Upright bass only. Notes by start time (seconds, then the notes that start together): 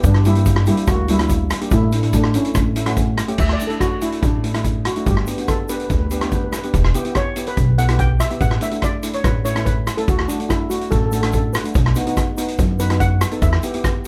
0.04 G2
0.87 D2
1.71 A2
2.55 A2
3.39 D2
4.23 A1
5.06 G1
5.90 D2
6.74 E1
7.57 B1
8.41 A1
9.24 A1
10.08 D2
10.92 A1
11.75 B1
12.59 F#2
13.42 E2